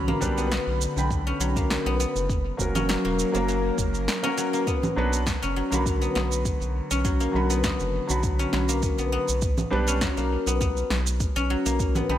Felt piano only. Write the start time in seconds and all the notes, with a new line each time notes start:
0.21 G3 B3 D4 G4 B4
0.97 D3 G5 B5
2.57 F#3 A#3 C#4 F#4
2.61 A#4
3.32 F#3 A#3 C#4 F#4
3.36 A#4
4.23 F#3 A#3 C#4 F#4 A#4
4.96 F#3 B3 D4 F#4 B4
5.71 D3 F#3 F#4
5.75 B5
7.32 D3 F#3 F#4
7.36 B5
8.07 D3 F#3 F#4 B5
9.70 G3 B3 D4 G4 B4
12.10 D3 G5 B5